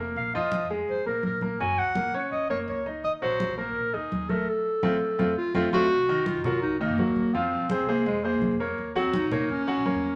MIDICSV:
0, 0, Header, 1, 5, 480
1, 0, Start_track
1, 0, Tempo, 358637
1, 225, Time_signature, 4, 2, 24, 8
1, 13593, End_track
2, 0, Start_track
2, 0, Title_t, "Clarinet"
2, 0, Program_c, 0, 71
2, 226, Note_on_c, 0, 77, 89
2, 449, Note_off_c, 0, 77, 0
2, 465, Note_on_c, 0, 75, 87
2, 912, Note_off_c, 0, 75, 0
2, 1194, Note_on_c, 0, 72, 90
2, 1414, Note_off_c, 0, 72, 0
2, 1431, Note_on_c, 0, 70, 89
2, 1652, Note_off_c, 0, 70, 0
2, 1680, Note_on_c, 0, 70, 86
2, 1897, Note_off_c, 0, 70, 0
2, 2145, Note_on_c, 0, 80, 99
2, 2393, Note_on_c, 0, 78, 115
2, 2413, Note_off_c, 0, 80, 0
2, 2870, Note_off_c, 0, 78, 0
2, 3099, Note_on_c, 0, 75, 88
2, 3326, Note_off_c, 0, 75, 0
2, 3347, Note_on_c, 0, 73, 96
2, 3455, Note_off_c, 0, 73, 0
2, 3599, Note_on_c, 0, 73, 85
2, 3817, Note_off_c, 0, 73, 0
2, 4073, Note_on_c, 0, 75, 96
2, 4180, Note_off_c, 0, 75, 0
2, 4317, Note_on_c, 0, 72, 105
2, 4759, Note_off_c, 0, 72, 0
2, 4787, Note_on_c, 0, 70, 83
2, 5276, Note_on_c, 0, 68, 88
2, 5296, Note_off_c, 0, 70, 0
2, 5750, Note_on_c, 0, 70, 86
2, 5770, Note_off_c, 0, 68, 0
2, 6007, Note_on_c, 0, 69, 81
2, 6027, Note_off_c, 0, 70, 0
2, 7189, Note_off_c, 0, 69, 0
2, 7197, Note_on_c, 0, 65, 101
2, 7416, Note_off_c, 0, 65, 0
2, 7441, Note_on_c, 0, 65, 90
2, 7658, Note_off_c, 0, 65, 0
2, 7676, Note_on_c, 0, 66, 119
2, 8384, Note_on_c, 0, 65, 99
2, 8404, Note_off_c, 0, 66, 0
2, 8623, Note_off_c, 0, 65, 0
2, 8631, Note_on_c, 0, 65, 98
2, 8853, Note_off_c, 0, 65, 0
2, 8863, Note_on_c, 0, 63, 100
2, 9089, Note_off_c, 0, 63, 0
2, 9097, Note_on_c, 0, 58, 95
2, 9830, Note_on_c, 0, 60, 102
2, 9850, Note_off_c, 0, 58, 0
2, 10305, Note_off_c, 0, 60, 0
2, 10313, Note_on_c, 0, 60, 91
2, 10533, Note_off_c, 0, 60, 0
2, 10561, Note_on_c, 0, 58, 88
2, 10777, Note_off_c, 0, 58, 0
2, 10794, Note_on_c, 0, 56, 95
2, 11035, Note_on_c, 0, 58, 84
2, 11055, Note_off_c, 0, 56, 0
2, 11510, Note_off_c, 0, 58, 0
2, 12011, Note_on_c, 0, 60, 98
2, 12243, Note_on_c, 0, 63, 104
2, 12263, Note_off_c, 0, 60, 0
2, 12713, Note_off_c, 0, 63, 0
2, 12727, Note_on_c, 0, 61, 103
2, 13593, Note_off_c, 0, 61, 0
2, 13593, End_track
3, 0, Start_track
3, 0, Title_t, "Grand piano"
3, 0, Program_c, 1, 0
3, 0, Note_on_c, 1, 58, 69
3, 0, Note_on_c, 1, 70, 70
3, 376, Note_off_c, 1, 58, 0
3, 379, Note_off_c, 1, 70, 0
3, 464, Note_on_c, 1, 53, 82
3, 468, Note_on_c, 1, 65, 93
3, 858, Note_off_c, 1, 53, 0
3, 861, Note_off_c, 1, 65, 0
3, 939, Note_on_c, 1, 56, 76
3, 945, Note_on_c, 1, 68, 76
3, 1336, Note_off_c, 1, 56, 0
3, 1339, Note_off_c, 1, 68, 0
3, 1419, Note_on_c, 1, 58, 65
3, 1423, Note_on_c, 1, 70, 68
3, 1816, Note_off_c, 1, 58, 0
3, 1818, Note_off_c, 1, 70, 0
3, 1901, Note_on_c, 1, 58, 71
3, 1907, Note_on_c, 1, 70, 69
3, 2100, Note_off_c, 1, 58, 0
3, 2104, Note_off_c, 1, 70, 0
3, 2144, Note_on_c, 1, 54, 76
3, 2148, Note_on_c, 1, 66, 73
3, 2539, Note_off_c, 1, 54, 0
3, 2541, Note_off_c, 1, 66, 0
3, 2626, Note_on_c, 1, 58, 66
3, 2630, Note_on_c, 1, 70, 64
3, 2823, Note_off_c, 1, 58, 0
3, 2825, Note_off_c, 1, 70, 0
3, 2867, Note_on_c, 1, 61, 74
3, 2869, Note_on_c, 1, 73, 81
3, 3261, Note_off_c, 1, 61, 0
3, 3262, Note_off_c, 1, 73, 0
3, 3344, Note_on_c, 1, 58, 76
3, 3349, Note_on_c, 1, 70, 67
3, 3739, Note_off_c, 1, 58, 0
3, 3742, Note_off_c, 1, 70, 0
3, 3825, Note_on_c, 1, 63, 71
3, 3829, Note_on_c, 1, 75, 73
3, 4220, Note_off_c, 1, 63, 0
3, 4222, Note_off_c, 1, 75, 0
3, 4309, Note_on_c, 1, 54, 94
3, 4313, Note_on_c, 1, 66, 89
3, 4702, Note_off_c, 1, 54, 0
3, 4704, Note_off_c, 1, 66, 0
3, 4786, Note_on_c, 1, 58, 72
3, 4791, Note_on_c, 1, 70, 81
3, 5180, Note_off_c, 1, 58, 0
3, 5183, Note_off_c, 1, 70, 0
3, 5264, Note_on_c, 1, 63, 71
3, 5272, Note_on_c, 1, 75, 69
3, 5659, Note_off_c, 1, 63, 0
3, 5664, Note_off_c, 1, 75, 0
3, 5751, Note_on_c, 1, 57, 75
3, 5754, Note_on_c, 1, 69, 68
3, 5947, Note_off_c, 1, 57, 0
3, 5949, Note_off_c, 1, 69, 0
3, 6466, Note_on_c, 1, 60, 99
3, 6467, Note_on_c, 1, 57, 83
3, 6468, Note_on_c, 1, 65, 83
3, 6621, Note_off_c, 1, 57, 0
3, 6621, Note_off_c, 1, 60, 0
3, 6622, Note_off_c, 1, 65, 0
3, 6944, Note_on_c, 1, 60, 82
3, 6945, Note_on_c, 1, 57, 74
3, 6945, Note_on_c, 1, 65, 85
3, 7099, Note_off_c, 1, 60, 0
3, 7100, Note_off_c, 1, 57, 0
3, 7100, Note_off_c, 1, 65, 0
3, 7424, Note_on_c, 1, 60, 96
3, 7425, Note_on_c, 1, 65, 96
3, 7426, Note_on_c, 1, 57, 96
3, 7579, Note_off_c, 1, 60, 0
3, 7580, Note_off_c, 1, 65, 0
3, 7581, Note_off_c, 1, 57, 0
3, 7668, Note_on_c, 1, 65, 96
3, 7669, Note_on_c, 1, 57, 92
3, 7669, Note_on_c, 1, 60, 84
3, 7822, Note_off_c, 1, 57, 0
3, 7822, Note_off_c, 1, 60, 0
3, 7822, Note_off_c, 1, 65, 0
3, 8148, Note_on_c, 1, 51, 93
3, 8151, Note_on_c, 1, 63, 96
3, 8156, Note_on_c, 1, 75, 95
3, 8542, Note_off_c, 1, 51, 0
3, 8543, Note_off_c, 1, 63, 0
3, 8546, Note_off_c, 1, 75, 0
3, 8635, Note_on_c, 1, 54, 77
3, 8637, Note_on_c, 1, 66, 81
3, 8642, Note_on_c, 1, 70, 79
3, 9025, Note_off_c, 1, 54, 0
3, 9027, Note_off_c, 1, 66, 0
3, 9030, Note_off_c, 1, 70, 0
3, 9108, Note_on_c, 1, 51, 87
3, 9111, Note_on_c, 1, 63, 88
3, 9117, Note_on_c, 1, 75, 86
3, 9305, Note_off_c, 1, 51, 0
3, 9307, Note_off_c, 1, 63, 0
3, 9310, Note_off_c, 1, 75, 0
3, 9352, Note_on_c, 1, 54, 77
3, 9355, Note_on_c, 1, 66, 73
3, 9357, Note_on_c, 1, 70, 68
3, 9744, Note_off_c, 1, 54, 0
3, 9745, Note_off_c, 1, 66, 0
3, 9747, Note_off_c, 1, 70, 0
3, 9830, Note_on_c, 1, 53, 88
3, 9837, Note_on_c, 1, 65, 78
3, 9840, Note_on_c, 1, 77, 82
3, 10222, Note_off_c, 1, 53, 0
3, 10226, Note_off_c, 1, 65, 0
3, 10228, Note_off_c, 1, 77, 0
3, 10311, Note_on_c, 1, 56, 68
3, 10317, Note_on_c, 1, 68, 75
3, 10319, Note_on_c, 1, 72, 74
3, 10506, Note_off_c, 1, 56, 0
3, 10509, Note_off_c, 1, 68, 0
3, 10511, Note_off_c, 1, 72, 0
3, 10549, Note_on_c, 1, 56, 75
3, 10554, Note_on_c, 1, 68, 91
3, 10556, Note_on_c, 1, 72, 86
3, 10941, Note_off_c, 1, 56, 0
3, 10944, Note_off_c, 1, 68, 0
3, 10946, Note_off_c, 1, 72, 0
3, 11031, Note_on_c, 1, 56, 76
3, 11037, Note_on_c, 1, 68, 70
3, 11039, Note_on_c, 1, 72, 78
3, 11422, Note_off_c, 1, 56, 0
3, 11426, Note_off_c, 1, 68, 0
3, 11427, Note_off_c, 1, 72, 0
3, 11510, Note_on_c, 1, 58, 79
3, 11510, Note_on_c, 1, 70, 76
3, 11517, Note_on_c, 1, 73, 77
3, 11901, Note_off_c, 1, 58, 0
3, 11901, Note_off_c, 1, 70, 0
3, 11905, Note_off_c, 1, 73, 0
3, 11986, Note_on_c, 1, 54, 99
3, 11991, Note_on_c, 1, 66, 97
3, 11993, Note_on_c, 1, 78, 96
3, 12378, Note_off_c, 1, 54, 0
3, 12381, Note_off_c, 1, 66, 0
3, 12383, Note_off_c, 1, 78, 0
3, 12470, Note_on_c, 1, 58, 85
3, 12471, Note_on_c, 1, 70, 85
3, 12477, Note_on_c, 1, 73, 83
3, 12860, Note_off_c, 1, 58, 0
3, 12861, Note_off_c, 1, 70, 0
3, 12865, Note_off_c, 1, 73, 0
3, 12946, Note_on_c, 1, 54, 90
3, 12950, Note_on_c, 1, 66, 85
3, 12953, Note_on_c, 1, 78, 86
3, 13141, Note_off_c, 1, 54, 0
3, 13143, Note_off_c, 1, 66, 0
3, 13145, Note_off_c, 1, 78, 0
3, 13188, Note_on_c, 1, 58, 70
3, 13192, Note_on_c, 1, 70, 73
3, 13194, Note_on_c, 1, 73, 77
3, 13578, Note_off_c, 1, 58, 0
3, 13581, Note_off_c, 1, 70, 0
3, 13582, Note_off_c, 1, 73, 0
3, 13593, End_track
4, 0, Start_track
4, 0, Title_t, "Upright bass"
4, 0, Program_c, 2, 32
4, 0, Note_on_c, 2, 29, 92
4, 202, Note_off_c, 2, 29, 0
4, 219, Note_on_c, 2, 34, 101
4, 450, Note_off_c, 2, 34, 0
4, 465, Note_on_c, 2, 41, 77
4, 808, Note_off_c, 2, 41, 0
4, 823, Note_on_c, 2, 41, 74
4, 1167, Note_off_c, 2, 41, 0
4, 1187, Note_on_c, 2, 41, 89
4, 1415, Note_off_c, 2, 41, 0
4, 1427, Note_on_c, 2, 34, 79
4, 1655, Note_off_c, 2, 34, 0
4, 1664, Note_on_c, 2, 34, 92
4, 2121, Note_off_c, 2, 34, 0
4, 2147, Note_on_c, 2, 30, 103
4, 2375, Note_off_c, 2, 30, 0
4, 2390, Note_on_c, 2, 37, 85
4, 2731, Note_off_c, 2, 37, 0
4, 2751, Note_on_c, 2, 37, 78
4, 3091, Note_off_c, 2, 37, 0
4, 3107, Note_on_c, 2, 37, 86
4, 3335, Note_off_c, 2, 37, 0
4, 3344, Note_on_c, 2, 30, 81
4, 3574, Note_off_c, 2, 30, 0
4, 3583, Note_on_c, 2, 37, 104
4, 4041, Note_off_c, 2, 37, 0
4, 4068, Note_on_c, 2, 39, 96
4, 4296, Note_off_c, 2, 39, 0
4, 4310, Note_on_c, 2, 34, 89
4, 4651, Note_off_c, 2, 34, 0
4, 4663, Note_on_c, 2, 34, 92
4, 5007, Note_off_c, 2, 34, 0
4, 5030, Note_on_c, 2, 34, 84
4, 5257, Note_off_c, 2, 34, 0
4, 5269, Note_on_c, 2, 39, 77
4, 5497, Note_off_c, 2, 39, 0
4, 5514, Note_on_c, 2, 39, 98
4, 5967, Note_off_c, 2, 39, 0
4, 6464, Note_on_c, 2, 41, 97
4, 6645, Note_off_c, 2, 41, 0
4, 6947, Note_on_c, 2, 41, 95
4, 7126, Note_off_c, 2, 41, 0
4, 7421, Note_on_c, 2, 41, 103
4, 7603, Note_off_c, 2, 41, 0
4, 7657, Note_on_c, 2, 41, 92
4, 7841, Note_off_c, 2, 41, 0
4, 7908, Note_on_c, 2, 36, 101
4, 8250, Note_off_c, 2, 36, 0
4, 8266, Note_on_c, 2, 36, 79
4, 8495, Note_off_c, 2, 36, 0
4, 8510, Note_on_c, 2, 42, 80
4, 8851, Note_off_c, 2, 42, 0
4, 8859, Note_on_c, 2, 36, 102
4, 9205, Note_off_c, 2, 36, 0
4, 9219, Note_on_c, 2, 42, 98
4, 9451, Note_off_c, 2, 42, 0
4, 9469, Note_on_c, 2, 39, 89
4, 9810, Note_off_c, 2, 39, 0
4, 9828, Note_on_c, 2, 41, 105
4, 10170, Note_off_c, 2, 41, 0
4, 10192, Note_on_c, 2, 41, 84
4, 10417, Note_off_c, 2, 41, 0
4, 10432, Note_on_c, 2, 36, 91
4, 10771, Note_off_c, 2, 36, 0
4, 10789, Note_on_c, 2, 41, 115
4, 11130, Note_off_c, 2, 41, 0
4, 11149, Note_on_c, 2, 36, 93
4, 11375, Note_off_c, 2, 36, 0
4, 11393, Note_on_c, 2, 41, 87
4, 11731, Note_off_c, 2, 41, 0
4, 11751, Note_on_c, 2, 39, 99
4, 12090, Note_off_c, 2, 39, 0
4, 12109, Note_on_c, 2, 39, 87
4, 12335, Note_off_c, 2, 39, 0
4, 12344, Note_on_c, 2, 34, 85
4, 12685, Note_off_c, 2, 34, 0
4, 12701, Note_on_c, 2, 39, 98
4, 13043, Note_off_c, 2, 39, 0
4, 13058, Note_on_c, 2, 34, 96
4, 13288, Note_off_c, 2, 34, 0
4, 13303, Note_on_c, 2, 40, 95
4, 13593, Note_off_c, 2, 40, 0
4, 13593, End_track
5, 0, Start_track
5, 0, Title_t, "Drums"
5, 210, Note_on_c, 9, 63, 33
5, 344, Note_off_c, 9, 63, 0
5, 451, Note_on_c, 9, 63, 33
5, 585, Note_off_c, 9, 63, 0
5, 690, Note_on_c, 9, 63, 88
5, 824, Note_off_c, 9, 63, 0
5, 936, Note_on_c, 9, 63, 38
5, 1070, Note_off_c, 9, 63, 0
5, 1175, Note_on_c, 9, 63, 36
5, 1309, Note_off_c, 9, 63, 0
5, 1414, Note_on_c, 9, 63, 34
5, 1548, Note_off_c, 9, 63, 0
5, 1649, Note_on_c, 9, 63, 78
5, 1782, Note_off_c, 9, 63, 0
5, 1891, Note_on_c, 9, 63, 71
5, 2025, Note_off_c, 9, 63, 0
5, 2138, Note_on_c, 9, 63, 30
5, 2272, Note_off_c, 9, 63, 0
5, 2380, Note_on_c, 9, 63, 31
5, 2514, Note_off_c, 9, 63, 0
5, 2614, Note_on_c, 9, 63, 88
5, 2748, Note_off_c, 9, 63, 0
5, 2862, Note_on_c, 9, 63, 33
5, 2996, Note_off_c, 9, 63, 0
5, 3100, Note_on_c, 9, 63, 36
5, 3234, Note_off_c, 9, 63, 0
5, 3345, Note_on_c, 9, 63, 36
5, 3478, Note_off_c, 9, 63, 0
5, 3591, Note_on_c, 9, 63, 34
5, 3725, Note_off_c, 9, 63, 0
5, 3831, Note_on_c, 9, 63, 31
5, 3965, Note_off_c, 9, 63, 0
5, 4068, Note_on_c, 9, 63, 33
5, 4202, Note_off_c, 9, 63, 0
5, 4311, Note_on_c, 9, 63, 35
5, 4445, Note_off_c, 9, 63, 0
5, 4551, Note_on_c, 9, 63, 90
5, 4685, Note_off_c, 9, 63, 0
5, 4795, Note_on_c, 9, 63, 36
5, 4929, Note_off_c, 9, 63, 0
5, 5028, Note_on_c, 9, 63, 34
5, 5162, Note_off_c, 9, 63, 0
5, 5272, Note_on_c, 9, 63, 32
5, 5406, Note_off_c, 9, 63, 0
5, 5513, Note_on_c, 9, 63, 81
5, 5647, Note_off_c, 9, 63, 0
5, 5747, Note_on_c, 9, 63, 80
5, 5881, Note_off_c, 9, 63, 0
5, 6462, Note_on_c, 9, 63, 90
5, 6596, Note_off_c, 9, 63, 0
5, 6949, Note_on_c, 9, 63, 104
5, 7083, Note_off_c, 9, 63, 0
5, 7421, Note_on_c, 9, 63, 101
5, 7555, Note_off_c, 9, 63, 0
5, 7665, Note_on_c, 9, 63, 78
5, 7799, Note_off_c, 9, 63, 0
5, 7906, Note_on_c, 9, 63, 35
5, 8040, Note_off_c, 9, 63, 0
5, 8147, Note_on_c, 9, 63, 39
5, 8281, Note_off_c, 9, 63, 0
5, 8380, Note_on_c, 9, 63, 88
5, 8514, Note_off_c, 9, 63, 0
5, 8622, Note_on_c, 9, 63, 36
5, 8622, Note_on_c, 9, 64, 86
5, 8756, Note_off_c, 9, 63, 0
5, 8756, Note_off_c, 9, 64, 0
5, 8863, Note_on_c, 9, 63, 36
5, 8997, Note_off_c, 9, 63, 0
5, 9108, Note_on_c, 9, 63, 37
5, 9242, Note_off_c, 9, 63, 0
5, 9344, Note_on_c, 9, 63, 89
5, 9478, Note_off_c, 9, 63, 0
5, 9585, Note_on_c, 9, 63, 68
5, 9719, Note_off_c, 9, 63, 0
5, 9831, Note_on_c, 9, 63, 37
5, 9964, Note_off_c, 9, 63, 0
5, 10066, Note_on_c, 9, 63, 36
5, 10199, Note_off_c, 9, 63, 0
5, 10300, Note_on_c, 9, 63, 100
5, 10434, Note_off_c, 9, 63, 0
5, 10548, Note_on_c, 9, 63, 35
5, 10682, Note_off_c, 9, 63, 0
5, 10784, Note_on_c, 9, 63, 40
5, 10918, Note_off_c, 9, 63, 0
5, 11026, Note_on_c, 9, 63, 37
5, 11160, Note_off_c, 9, 63, 0
5, 11265, Note_on_c, 9, 63, 79
5, 11399, Note_off_c, 9, 63, 0
5, 11507, Note_on_c, 9, 63, 32
5, 11641, Note_off_c, 9, 63, 0
5, 11754, Note_on_c, 9, 63, 33
5, 11888, Note_off_c, 9, 63, 0
5, 11993, Note_on_c, 9, 63, 36
5, 12127, Note_off_c, 9, 63, 0
5, 12226, Note_on_c, 9, 63, 104
5, 12360, Note_off_c, 9, 63, 0
5, 12467, Note_on_c, 9, 63, 33
5, 12467, Note_on_c, 9, 64, 83
5, 12600, Note_off_c, 9, 63, 0
5, 12600, Note_off_c, 9, 64, 0
5, 12701, Note_on_c, 9, 63, 39
5, 12835, Note_off_c, 9, 63, 0
5, 12952, Note_on_c, 9, 63, 38
5, 13085, Note_off_c, 9, 63, 0
5, 13190, Note_on_c, 9, 63, 78
5, 13323, Note_off_c, 9, 63, 0
5, 13593, End_track
0, 0, End_of_file